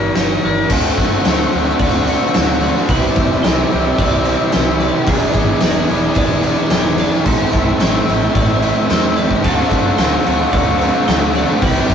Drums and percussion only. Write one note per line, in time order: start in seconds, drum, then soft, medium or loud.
0.15 snare loud
0.15 open hi-hat medium
0.15 tambourine medium
0.70 kick loud
0.70 crash loud
0.70 tambourine medium
0.70 crash medium
0.98 kick medium
0.98 tambourine medium
0.98 crash medium
1.25 snare loud
1.25 tambourine loud
1.25 crash medium
1.52 crash medium
1.79 kick loud
1.79 crash medium
2.07 tambourine medium
2.07 crash medium
2.34 snare loud
2.34 tambourine loud
2.34 crash medium
2.61 tambourine medium
2.61 crash medium
2.77 snare soft
2.89 kick loud
2.89 tambourine medium
2.89 crash medium
3.16 kick medium
3.16 tambourine medium
3.16 crash medium
3.44 snare loud
3.44 tambourine loud
3.44 crash medium
3.71 crash medium
3.99 kick loud
3.99 crash medium
4.25 tambourine medium
4.25 crash medium
4.52 snare loud
4.52 tambourine loud
4.52 crash medium
4.80 tambourine medium
4.80 crash medium
5.06 kick loud
5.06 tambourine medium
5.06 crash loud
5.33 kick medium
5.33 tambourine medium
5.33 crash medium
5.60 snare loud
5.60 tambourine loud
5.60 crash medium
5.88 crash medium
6.15 kick loud
6.15 crash medium
6.43 tambourine medium
6.43 crash medium
6.70 snare loud
6.70 tambourine loud
6.70 crash medium
6.98 tambourine medium
6.98 crash medium
7.13 snare soft
7.25 kick loud
7.25 tambourine medium
7.25 crash medium
7.53 kick medium
7.53 tambourine medium
7.53 crash medium
7.80 snare loud
7.80 tambourine loud
7.80 crash medium
8.07 tambourine soft
8.07 crash medium
8.35 kick loud
8.35 tambourine soft
8.35 crash medium
8.62 tambourine medium
8.62 crash medium
8.90 snare loud
8.90 tambourine medium
8.90 crash medium
9.17 tambourine medium
9.17 crash medium
9.31 kick medium
9.44 kick loud
9.44 tambourine medium
9.44 crash medium
9.71 kick medium
9.71 tambourine medium
9.71 crash medium
9.98 snare loud
9.98 tambourine loud
9.98 crash medium
10.26 crash medium
10.53 kick loud
10.53 crash medium
10.81 tambourine medium
10.81 crash medium
11.08 snare loud
11.08 tambourine medium
11.08 crash medium
11.35 tambourine medium
11.35 crash medium
11.62 kick loud
11.62 tambourine medium
11.62 crash medium
11.89 kick medium
11.89 tambourine medium
11.89 crash medium